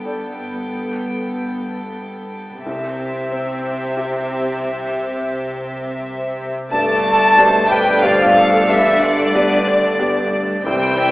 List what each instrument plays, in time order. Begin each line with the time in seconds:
Already playing: double bass section G1, felt piano G2 B3, cello section G2, viola section B3, violin section A4 G5
0.05 felt piano A4 D5
2.65 double bass section C2, felt piano C2, cello section C3, viola section C4, violin section G4 E5
3.31 felt piano C4
3.97 felt piano G4 E5
6.71 double bass section G1, felt piano G2, cello section G2, french horn section A3, viola section A3 D4, clarinet D5, violin section A5, flute A5
7.37 felt piano B2 G4 D5, clarinet C5
7.68 french horn section G3, clarinet B4, violin section G5, flute G5
8.00 french horn section F3, felt piano B3 G4 D5, flute F5, violin section F5
8.06 clarinet D5
8.38 clarinet A4
8.68 felt piano G2, french horn section E3, violin section E5, flute E5
9.00 french horn section D3, violin section D5, flute D5
9.35 felt piano B3 G4 D5, clarinet B4
9.68 clarinet D5
9.99 felt piano B3 G4 D5
10.65 double bass section C2, felt piano C2, cello section C3, viola section E3 C4, french horn section G3, clarinet C5, violin section G5, flute G5
10.99 clarinet E5